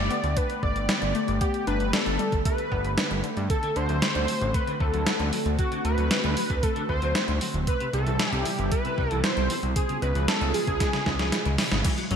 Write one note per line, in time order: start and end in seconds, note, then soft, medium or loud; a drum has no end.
0.00 7.63 D3 medium
0.00 7.63 A3 medium
0.00 3.46 B3 medium
0.00 3.46 G4 medium
0.00 0.38 D5 loud
0.11 0.33 B3 loud
0.11 closed hi-hat medium
0.24 0.35 D2 medium
0.24 closed hi-hat soft
0.37 0.62 D4 medium
0.37 0.62 B4 loud
0.37 kick loud
0.37 closed hi-hat medium
0.50 closed hi-hat soft
0.63 0.75 G1 medium
0.63 0.88 D3 medium
0.63 1.37 D5 loud
0.63 kick loud
0.76 0.88 G1 medium
0.76 closed hi-hat soft
0.89 1.14 G3 medium
0.89 snare loud
0.89 closed hi-hat medium
1.02 1.14 G1 medium
1.02 closed hi-hat soft
1.15 1.38 A3 medium
1.15 closed hi-hat medium
1.28 1.40 G1 medium
1.28 closed hi-hat soft
1.41 1.66 B3 medium
1.41 1.65 G4 medium
1.41 kick loud
1.41 closed hi-hat medium
1.54 closed hi-hat soft
1.67 1.79 G1 loud
1.67 1.90 D4 loud
1.67 1.92 B4 loud
1.67 closed hi-hat medium
1.80 1.92 G1 medium
1.80 closed hi-hat soft
1.93 2.16 D4 loud
1.93 2.42 A4 medium
1.93 snare loud
1.93 closed hi-hat medium
2.06 2.18 G1 medium
2.06 closed hi-hat soft
2.19 2.42 G3 loud
2.19 closed hi-hat medium
2.32 2.44 G1 medium
2.32 kick loud
2.32 closed hi-hat soft
2.45 2.68 A3 medium
2.45 3.20 B4 loud
2.45 kick loud
2.45 closed hi-hat medium
2.58 closed hi-hat soft
2.72 2.83 G1 loud
2.72 2.94 B3 loud
2.72 kick medium
2.85 2.96 G1 medium
2.85 closed hi-hat soft
2.98 3.23 D4 medium
2.98 snare loud
2.98 closed hi-hat medium
3.11 3.23 G1 medium
3.11 closed hi-hat soft
3.24 3.46 D3 medium
3.24 closed hi-hat medium
3.37 3.49 G2 medium
3.37 closed hi-hat soft
3.50 3.56 D3 medium
3.50 7.63 C4 medium
3.50 7.63 F#4 medium
3.50 3.78 A4 loud
3.50 kick loud
3.50 closed hi-hat medium
3.63 3.69 D3 loud
3.63 closed hi-hat soft
3.76 3.88 D2 medium
3.76 3.80 A3 medium
3.76 4.56 C5 loud
3.76 closed hi-hat medium
3.89 4.01 D2 medium
3.89 3.96 F#3 medium
3.89 closed hi-hat soft
4.02 4.09 F#3 medium
4.02 snare loud
4.02 closed hi-hat medium
4.15 4.27 D2 medium
4.15 4.25 D3 medium
4.15 closed hi-hat soft
4.28 4.32 F#3 medium
4.28 open hi-hat medium
4.41 4.53 A1 medium
4.41 4.45 D3 medium
4.41 closed hi-hat soft
4.54 4.61 A3 medium
4.54 4.82 B4 loud
4.54 kick loud
4.54 closed hi-hat medium
4.67 4.74 D3 loud
4.67 closed hi-hat soft
4.80 4.92 D2 medium
4.80 4.84 A3 medium
4.80 5.33 A4 medium
4.80 kick loud
4.93 5.05 D2 medium
4.93 5.03 F#3 loud
4.93 closed hi-hat soft
5.06 5.13 F#3 medium
5.06 snare loud
5.06 closed hi-hat medium
5.20 5.31 D2 medium
5.20 5.26 A3 medium
5.20 closed hi-hat soft
5.33 5.37 F#3 loud
5.33 open hi-hat medium
5.46 5.57 D2 medium
5.46 5.50 D3 medium
5.46 closed hi-hat soft
5.59 5.65 D3 medium
5.59 5.83 F#4 medium
5.59 kick loud
5.59 closed hi-hat medium
5.72 5.78 D3 loud
5.72 closed hi-hat soft
5.85 5.96 D2 medium
5.85 5.89 A3 medium
5.85 6.64 B4 loud
5.85 closed hi-hat medium
5.98 6.10 D2 medium
5.98 6.04 F#3 medium
5.98 closed hi-hat soft
6.11 6.17 F#3 medium
6.11 snare loud
6.11 closed hi-hat medium
6.24 6.36 D2 medium
6.24 6.34 D3 loud
6.24 closed hi-hat soft
6.37 6.41 F#3 loud
6.37 open hi-hat medium
6.50 6.62 D2 medium
6.50 6.54 D3 medium
6.50 kick medium
6.50 closed hi-hat soft
6.63 6.70 A3 medium
6.63 6.89 A4 loud
6.63 kick loud
6.63 closed hi-hat medium
6.76 6.83 D3 loud
6.76 closed hi-hat soft
6.89 7.01 D2 medium
6.89 6.93 A3 medium
6.89 7.38 C5 loud
6.89 kick medium
7.02 7.14 D2 medium
7.02 7.12 F#3 loud
7.02 closed hi-hat soft
7.15 7.22 F#3 medium
7.15 snare loud
7.15 closed hi-hat medium
7.28 7.40 D2 medium
7.28 7.35 A3 medium
7.28 closed hi-hat soft
7.41 7.45 F#3 loud
7.41 open hi-hat medium
7.54 7.66 D1 medium
7.54 7.58 D3 medium
7.54 closed hi-hat soft
7.67 11.81 B2 medium
7.67 9.74 C3 medium
7.67 7.74 C3 medium
7.67 9.74 G3 medium
7.67 9.74 E4 medium
7.67 7.92 B4 loud
7.67 kick loud
7.67 closed hi-hat medium
7.80 7.87 C3 loud
7.80 closed hi-hat soft
7.93 8.05 C2 loud
7.93 7.97 G3 medium
7.93 8.32 A4 loud
7.93 closed hi-hat medium
8.06 8.18 C2 medium
8.06 8.13 E3 medium
8.06 closed hi-hat soft
8.19 8.26 E3 medium
8.19 snare loud
8.19 closed hi-hat medium
8.32 8.44 C2 medium
8.32 8.42 C3 medium
8.32 8.46 G4 loud
8.32 closed hi-hat soft
8.45 8.50 E3 loud
8.45 8.71 G4 loud
8.45 open hi-hat medium
8.59 8.70 G1 medium
8.59 8.63 C3 medium
8.59 closed hi-hat soft
8.72 8.78 G3 medium
8.72 9.20 B4 loud
8.72 kick loud
8.72 closed hi-hat medium
8.85 8.91 C3 medium
8.85 closed hi-hat soft
8.98 9.09 C2 medium
8.98 9.02 G3 medium
8.98 kick medium
9.11 9.23 C2 medium
9.11 9.21 E3 loud
9.11 closed hi-hat soft
9.24 9.30 E3 medium
9.24 9.60 C5 loud
9.24 snare loud
9.24 closed hi-hat medium
9.37 9.49 C2 medium
9.37 9.43 G3 medium
9.37 closed hi-hat soft
9.50 9.54 E3 loud
9.50 open hi-hat medium
9.63 9.75 C2 medium
9.63 9.67 C3 medium
9.63 closed hi-hat soft
9.76 9.83 C#3 medium
9.76 11.83 C#3 medium
9.76 11.83 G#3 medium
9.76 11.83 F4 medium
9.76 10.00 G#4 medium
9.76 kick loud
9.76 closed hi-hat medium
9.89 9.96 C#3 loud
9.89 closed hi-hat soft
10.02 10.14 C#2 medium
10.02 10.06 G#3 medium
10.02 10.26 B4 loud
10.02 closed hi-hat medium
10.15 10.27 C#2 medium
10.15 10.22 F3 medium
10.15 closed hi-hat soft
10.28 10.35 F3 medium
10.28 10.52 A4 loud
10.28 snare loud
10.28 closed hi-hat medium
10.41 10.53 C#2 medium
10.41 10.51 C#3 medium
10.41 closed hi-hat soft
10.54 10.58 F3 loud
10.54 11.55 G#4 loud
10.54 open hi-hat medium
10.67 10.79 C#2 medium
10.67 10.71 C#3 medium
10.67 kick loud
10.67 closed hi-hat soft
10.80 10.87 G#3 medium
10.80 kick loud
10.80 snare medium
10.80 closed hi-hat medium
10.93 11.00 C#3 loud
10.93 snare medium
10.93 closed hi-hat soft
11.06 11.18 C#2 medium
11.06 11.10 G#3 medium
11.06 kick medium
11.06 snare medium
11.19 11.31 C#2 medium
11.19 11.29 F3 loud
11.19 snare medium
11.19 closed hi-hat soft
11.32 11.39 F3 medium
11.32 snare medium
11.32 closed hi-hat medium
11.46 11.57 C#2 medium
11.46 11.52 G#3 medium
11.46 closed hi-hat soft
11.58 11.63 F3 loud
11.58 snare medium
11.58 open hi-hat medium
11.72 11.83 G#1 medium
11.72 11.76 C#3 medium
11.72 snare medium
11.72 closed hi-hat soft
11.85 12.16 C#3 medium
11.85 11.98 E3 medium
11.85 12.16 F#3 medium
11.85 11.91 F#3 medium
11.85 12.16 A3 medium
11.85 12.16 E4 medium
11.85 kick loud
11.85 closed hi-hat loud
11.85 crash loud
11.98 12.04 F#3 loud
11.98 closed hi-hat soft
12.11 12.16 F#1 loud
12.11 12.16 F#3 loud
12.11 12.15 C#4 medium
12.11 closed hi-hat medium